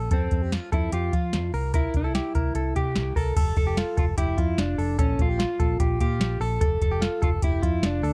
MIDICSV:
0, 0, Header, 1, 5, 480
1, 0, Start_track
1, 0, Key_signature, -1, "major"
1, 0, Tempo, 405954
1, 134, Time_signature, 4, 2, 24, 8
1, 9613, End_track
2, 0, Start_track
2, 0, Title_t, "Clean electric guitar"
2, 0, Program_c, 0, 27
2, 0, Note_on_c, 0, 69, 70
2, 121, Note_off_c, 0, 69, 0
2, 136, Note_on_c, 0, 69, 82
2, 497, Note_off_c, 0, 69, 0
2, 497, Note_on_c, 0, 67, 64
2, 617, Note_off_c, 0, 67, 0
2, 617, Note_on_c, 0, 65, 73
2, 850, Note_off_c, 0, 65, 0
2, 854, Note_on_c, 0, 69, 77
2, 1091, Note_off_c, 0, 69, 0
2, 1096, Note_on_c, 0, 67, 70
2, 1336, Note_off_c, 0, 67, 0
2, 1338, Note_on_c, 0, 65, 65
2, 1789, Note_off_c, 0, 65, 0
2, 1819, Note_on_c, 0, 70, 67
2, 2043, Note_off_c, 0, 70, 0
2, 2057, Note_on_c, 0, 70, 83
2, 2395, Note_off_c, 0, 70, 0
2, 2415, Note_on_c, 0, 69, 65
2, 2536, Note_off_c, 0, 69, 0
2, 2542, Note_on_c, 0, 67, 72
2, 2775, Note_off_c, 0, 67, 0
2, 2780, Note_on_c, 0, 70, 67
2, 3016, Note_off_c, 0, 70, 0
2, 3020, Note_on_c, 0, 69, 70
2, 3259, Note_off_c, 0, 69, 0
2, 3265, Note_on_c, 0, 67, 68
2, 3713, Note_off_c, 0, 67, 0
2, 3738, Note_on_c, 0, 70, 69
2, 3976, Note_off_c, 0, 70, 0
2, 3981, Note_on_c, 0, 69, 89
2, 4318, Note_off_c, 0, 69, 0
2, 4338, Note_on_c, 0, 67, 74
2, 4458, Note_off_c, 0, 67, 0
2, 4461, Note_on_c, 0, 65, 76
2, 4696, Note_on_c, 0, 69, 76
2, 4699, Note_off_c, 0, 65, 0
2, 4934, Note_off_c, 0, 69, 0
2, 4939, Note_on_c, 0, 67, 78
2, 5175, Note_on_c, 0, 65, 70
2, 5178, Note_off_c, 0, 67, 0
2, 5627, Note_off_c, 0, 65, 0
2, 5656, Note_on_c, 0, 69, 65
2, 5882, Note_off_c, 0, 69, 0
2, 5897, Note_on_c, 0, 69, 87
2, 6254, Note_off_c, 0, 69, 0
2, 6254, Note_on_c, 0, 67, 67
2, 6374, Note_on_c, 0, 65, 76
2, 6376, Note_off_c, 0, 67, 0
2, 6615, Note_off_c, 0, 65, 0
2, 6616, Note_on_c, 0, 69, 82
2, 6852, Note_off_c, 0, 69, 0
2, 6857, Note_on_c, 0, 67, 73
2, 7101, Note_off_c, 0, 67, 0
2, 7101, Note_on_c, 0, 65, 76
2, 7550, Note_off_c, 0, 65, 0
2, 7577, Note_on_c, 0, 69, 71
2, 7803, Note_off_c, 0, 69, 0
2, 7817, Note_on_c, 0, 69, 93
2, 8155, Note_off_c, 0, 69, 0
2, 8177, Note_on_c, 0, 67, 73
2, 8293, Note_on_c, 0, 65, 84
2, 8296, Note_off_c, 0, 67, 0
2, 8535, Note_off_c, 0, 65, 0
2, 8536, Note_on_c, 0, 69, 84
2, 8777, Note_off_c, 0, 69, 0
2, 8777, Note_on_c, 0, 67, 75
2, 9016, Note_off_c, 0, 67, 0
2, 9016, Note_on_c, 0, 65, 74
2, 9466, Note_off_c, 0, 65, 0
2, 9498, Note_on_c, 0, 69, 74
2, 9613, Note_off_c, 0, 69, 0
2, 9613, End_track
3, 0, Start_track
3, 0, Title_t, "Clean electric guitar"
3, 0, Program_c, 1, 27
3, 155, Note_on_c, 1, 60, 84
3, 593, Note_off_c, 1, 60, 0
3, 871, Note_on_c, 1, 64, 79
3, 1087, Note_off_c, 1, 64, 0
3, 1110, Note_on_c, 1, 65, 85
3, 1776, Note_off_c, 1, 65, 0
3, 2071, Note_on_c, 1, 64, 85
3, 2288, Note_off_c, 1, 64, 0
3, 2325, Note_on_c, 1, 64, 67
3, 3268, Note_on_c, 1, 67, 75
3, 3705, Note_off_c, 1, 64, 0
3, 3743, Note_off_c, 1, 67, 0
3, 3747, Note_on_c, 1, 69, 87
3, 4212, Note_off_c, 1, 69, 0
3, 4226, Note_on_c, 1, 69, 85
3, 4713, Note_off_c, 1, 69, 0
3, 4718, Note_on_c, 1, 65, 74
3, 4780, Note_off_c, 1, 65, 0
3, 4943, Note_on_c, 1, 64, 89
3, 5425, Note_on_c, 1, 62, 82
3, 5434, Note_off_c, 1, 64, 0
3, 5901, Note_off_c, 1, 62, 0
3, 5906, Note_on_c, 1, 61, 81
3, 6148, Note_off_c, 1, 61, 0
3, 6167, Note_on_c, 1, 65, 84
3, 7102, Note_off_c, 1, 65, 0
3, 7106, Note_on_c, 1, 67, 91
3, 7548, Note_off_c, 1, 67, 0
3, 7589, Note_on_c, 1, 69, 104
3, 8053, Note_off_c, 1, 69, 0
3, 8067, Note_on_c, 1, 69, 88
3, 8551, Note_off_c, 1, 69, 0
3, 8556, Note_on_c, 1, 65, 84
3, 8618, Note_off_c, 1, 65, 0
3, 8797, Note_on_c, 1, 64, 90
3, 9280, Note_off_c, 1, 64, 0
3, 9284, Note_on_c, 1, 62, 81
3, 9613, Note_off_c, 1, 62, 0
3, 9613, End_track
4, 0, Start_track
4, 0, Title_t, "Fingered electric bass"
4, 0, Program_c, 2, 33
4, 132, Note_on_c, 2, 41, 100
4, 330, Note_off_c, 2, 41, 0
4, 373, Note_on_c, 2, 41, 83
4, 669, Note_off_c, 2, 41, 0
4, 857, Note_on_c, 2, 41, 86
4, 1053, Note_off_c, 2, 41, 0
4, 1090, Note_on_c, 2, 41, 85
4, 1289, Note_off_c, 2, 41, 0
4, 1336, Note_on_c, 2, 53, 87
4, 1572, Note_on_c, 2, 41, 89
4, 1590, Note_off_c, 2, 53, 0
4, 1770, Note_off_c, 2, 41, 0
4, 1813, Note_on_c, 2, 36, 91
4, 2208, Note_off_c, 2, 36, 0
4, 2296, Note_on_c, 2, 36, 85
4, 2592, Note_off_c, 2, 36, 0
4, 2779, Note_on_c, 2, 36, 76
4, 2975, Note_off_c, 2, 36, 0
4, 3013, Note_on_c, 2, 36, 90
4, 3211, Note_off_c, 2, 36, 0
4, 3257, Note_on_c, 2, 48, 78
4, 3496, Note_on_c, 2, 36, 85
4, 3514, Note_off_c, 2, 48, 0
4, 3694, Note_off_c, 2, 36, 0
4, 3733, Note_on_c, 2, 36, 88
4, 3932, Note_off_c, 2, 36, 0
4, 3976, Note_on_c, 2, 29, 96
4, 4173, Note_off_c, 2, 29, 0
4, 4215, Note_on_c, 2, 29, 91
4, 4511, Note_off_c, 2, 29, 0
4, 4700, Note_on_c, 2, 29, 93
4, 4896, Note_off_c, 2, 29, 0
4, 4936, Note_on_c, 2, 29, 88
4, 5133, Note_off_c, 2, 29, 0
4, 5175, Note_on_c, 2, 41, 86
4, 5373, Note_off_c, 2, 41, 0
4, 5420, Note_on_c, 2, 29, 92
4, 5616, Note_off_c, 2, 29, 0
4, 5655, Note_on_c, 2, 29, 92
4, 5853, Note_off_c, 2, 29, 0
4, 5894, Note_on_c, 2, 34, 91
4, 6092, Note_off_c, 2, 34, 0
4, 6136, Note_on_c, 2, 34, 90
4, 6431, Note_off_c, 2, 34, 0
4, 6617, Note_on_c, 2, 34, 93
4, 6814, Note_off_c, 2, 34, 0
4, 6856, Note_on_c, 2, 34, 101
4, 7053, Note_off_c, 2, 34, 0
4, 7096, Note_on_c, 2, 46, 87
4, 7327, Note_on_c, 2, 34, 86
4, 7345, Note_off_c, 2, 46, 0
4, 7528, Note_off_c, 2, 34, 0
4, 7569, Note_on_c, 2, 34, 99
4, 7768, Note_off_c, 2, 34, 0
4, 7816, Note_on_c, 2, 29, 100
4, 8013, Note_off_c, 2, 29, 0
4, 8056, Note_on_c, 2, 29, 92
4, 8351, Note_off_c, 2, 29, 0
4, 8542, Note_on_c, 2, 29, 93
4, 8736, Note_off_c, 2, 29, 0
4, 8776, Note_on_c, 2, 29, 97
4, 8973, Note_off_c, 2, 29, 0
4, 9016, Note_on_c, 2, 41, 87
4, 9213, Note_off_c, 2, 41, 0
4, 9254, Note_on_c, 2, 29, 103
4, 9451, Note_off_c, 2, 29, 0
4, 9488, Note_on_c, 2, 38, 87
4, 9613, Note_off_c, 2, 38, 0
4, 9613, End_track
5, 0, Start_track
5, 0, Title_t, "Drums"
5, 128, Note_on_c, 9, 42, 84
5, 131, Note_on_c, 9, 36, 100
5, 246, Note_off_c, 9, 42, 0
5, 250, Note_off_c, 9, 36, 0
5, 368, Note_on_c, 9, 42, 54
5, 372, Note_on_c, 9, 36, 79
5, 486, Note_off_c, 9, 42, 0
5, 491, Note_off_c, 9, 36, 0
5, 618, Note_on_c, 9, 42, 79
5, 619, Note_on_c, 9, 38, 100
5, 736, Note_off_c, 9, 42, 0
5, 737, Note_off_c, 9, 38, 0
5, 858, Note_on_c, 9, 36, 90
5, 858, Note_on_c, 9, 42, 54
5, 976, Note_off_c, 9, 36, 0
5, 976, Note_off_c, 9, 42, 0
5, 1092, Note_on_c, 9, 42, 92
5, 1211, Note_off_c, 9, 42, 0
5, 1336, Note_on_c, 9, 36, 80
5, 1338, Note_on_c, 9, 42, 58
5, 1454, Note_off_c, 9, 36, 0
5, 1456, Note_off_c, 9, 42, 0
5, 1574, Note_on_c, 9, 38, 89
5, 1576, Note_on_c, 9, 42, 76
5, 1692, Note_off_c, 9, 38, 0
5, 1694, Note_off_c, 9, 42, 0
5, 1820, Note_on_c, 9, 46, 51
5, 1938, Note_off_c, 9, 46, 0
5, 2055, Note_on_c, 9, 42, 86
5, 2057, Note_on_c, 9, 36, 97
5, 2173, Note_off_c, 9, 42, 0
5, 2175, Note_off_c, 9, 36, 0
5, 2292, Note_on_c, 9, 42, 56
5, 2298, Note_on_c, 9, 36, 78
5, 2410, Note_off_c, 9, 42, 0
5, 2416, Note_off_c, 9, 36, 0
5, 2539, Note_on_c, 9, 42, 74
5, 2541, Note_on_c, 9, 38, 100
5, 2658, Note_off_c, 9, 42, 0
5, 2659, Note_off_c, 9, 38, 0
5, 2778, Note_on_c, 9, 42, 59
5, 2781, Note_on_c, 9, 36, 85
5, 2896, Note_off_c, 9, 42, 0
5, 2899, Note_off_c, 9, 36, 0
5, 3015, Note_on_c, 9, 42, 93
5, 3133, Note_off_c, 9, 42, 0
5, 3260, Note_on_c, 9, 36, 69
5, 3263, Note_on_c, 9, 42, 57
5, 3378, Note_off_c, 9, 36, 0
5, 3381, Note_off_c, 9, 42, 0
5, 3495, Note_on_c, 9, 38, 99
5, 3497, Note_on_c, 9, 42, 78
5, 3613, Note_off_c, 9, 38, 0
5, 3615, Note_off_c, 9, 42, 0
5, 3736, Note_on_c, 9, 36, 81
5, 3745, Note_on_c, 9, 46, 52
5, 3854, Note_off_c, 9, 36, 0
5, 3863, Note_off_c, 9, 46, 0
5, 3978, Note_on_c, 9, 36, 115
5, 3980, Note_on_c, 9, 42, 93
5, 3980, Note_on_c, 9, 49, 84
5, 4096, Note_off_c, 9, 36, 0
5, 4098, Note_off_c, 9, 42, 0
5, 4098, Note_off_c, 9, 49, 0
5, 4215, Note_on_c, 9, 42, 55
5, 4217, Note_on_c, 9, 36, 92
5, 4333, Note_off_c, 9, 42, 0
5, 4335, Note_off_c, 9, 36, 0
5, 4460, Note_on_c, 9, 42, 77
5, 4461, Note_on_c, 9, 38, 96
5, 4578, Note_off_c, 9, 42, 0
5, 4580, Note_off_c, 9, 38, 0
5, 4700, Note_on_c, 9, 36, 92
5, 4700, Note_on_c, 9, 42, 63
5, 4818, Note_off_c, 9, 36, 0
5, 4818, Note_off_c, 9, 42, 0
5, 4937, Note_on_c, 9, 36, 78
5, 4938, Note_on_c, 9, 42, 102
5, 5056, Note_off_c, 9, 36, 0
5, 5057, Note_off_c, 9, 42, 0
5, 5177, Note_on_c, 9, 36, 84
5, 5179, Note_on_c, 9, 42, 62
5, 5295, Note_off_c, 9, 36, 0
5, 5297, Note_off_c, 9, 42, 0
5, 5418, Note_on_c, 9, 38, 100
5, 5420, Note_on_c, 9, 42, 84
5, 5536, Note_off_c, 9, 38, 0
5, 5538, Note_off_c, 9, 42, 0
5, 5663, Note_on_c, 9, 46, 55
5, 5781, Note_off_c, 9, 46, 0
5, 5896, Note_on_c, 9, 36, 112
5, 5899, Note_on_c, 9, 42, 89
5, 6014, Note_off_c, 9, 36, 0
5, 6018, Note_off_c, 9, 42, 0
5, 6137, Note_on_c, 9, 36, 95
5, 6138, Note_on_c, 9, 42, 60
5, 6255, Note_off_c, 9, 36, 0
5, 6256, Note_off_c, 9, 42, 0
5, 6381, Note_on_c, 9, 42, 77
5, 6382, Note_on_c, 9, 38, 101
5, 6499, Note_off_c, 9, 42, 0
5, 6501, Note_off_c, 9, 38, 0
5, 6618, Note_on_c, 9, 42, 58
5, 6619, Note_on_c, 9, 36, 90
5, 6737, Note_off_c, 9, 36, 0
5, 6737, Note_off_c, 9, 42, 0
5, 6857, Note_on_c, 9, 36, 89
5, 6857, Note_on_c, 9, 42, 101
5, 6975, Note_off_c, 9, 36, 0
5, 6975, Note_off_c, 9, 42, 0
5, 7098, Note_on_c, 9, 36, 82
5, 7100, Note_on_c, 9, 42, 62
5, 7216, Note_off_c, 9, 36, 0
5, 7218, Note_off_c, 9, 42, 0
5, 7339, Note_on_c, 9, 38, 99
5, 7342, Note_on_c, 9, 42, 78
5, 7458, Note_off_c, 9, 38, 0
5, 7460, Note_off_c, 9, 42, 0
5, 7584, Note_on_c, 9, 46, 59
5, 7703, Note_off_c, 9, 46, 0
5, 7817, Note_on_c, 9, 36, 102
5, 7819, Note_on_c, 9, 42, 89
5, 7936, Note_off_c, 9, 36, 0
5, 7937, Note_off_c, 9, 42, 0
5, 8058, Note_on_c, 9, 36, 81
5, 8059, Note_on_c, 9, 42, 61
5, 8176, Note_off_c, 9, 36, 0
5, 8177, Note_off_c, 9, 42, 0
5, 8301, Note_on_c, 9, 42, 84
5, 8302, Note_on_c, 9, 38, 99
5, 8419, Note_off_c, 9, 42, 0
5, 8420, Note_off_c, 9, 38, 0
5, 8543, Note_on_c, 9, 36, 92
5, 8543, Note_on_c, 9, 42, 60
5, 8661, Note_off_c, 9, 36, 0
5, 8661, Note_off_c, 9, 42, 0
5, 8778, Note_on_c, 9, 42, 103
5, 8779, Note_on_c, 9, 36, 90
5, 8897, Note_off_c, 9, 36, 0
5, 8897, Note_off_c, 9, 42, 0
5, 9019, Note_on_c, 9, 36, 83
5, 9024, Note_on_c, 9, 42, 63
5, 9137, Note_off_c, 9, 36, 0
5, 9142, Note_off_c, 9, 42, 0
5, 9258, Note_on_c, 9, 38, 105
5, 9260, Note_on_c, 9, 42, 81
5, 9376, Note_off_c, 9, 38, 0
5, 9379, Note_off_c, 9, 42, 0
5, 9509, Note_on_c, 9, 46, 56
5, 9613, Note_off_c, 9, 46, 0
5, 9613, End_track
0, 0, End_of_file